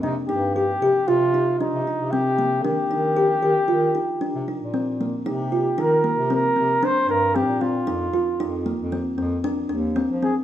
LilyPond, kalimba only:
\new Staff \with { instrumentName = "Kalimba" } { \time 5/4 \key c \minor \tempo 4 = 115 d'8 ees'8 g'8 g'8 f'8 ees'8 d'8 ees'8 c'8 bes8 | d'8 ees'8 g'8 g'8 f'8 ees'8 d'8 ees'8 c'8 bes8 | ees'8 f'8 ees'8 bes8 c'8 c'8 d'8 d'8 c'8 c'8 | ees'8 f'8 ees'8 bes8 c'8 c'8 d'8 d'8 c'8 c'8 | }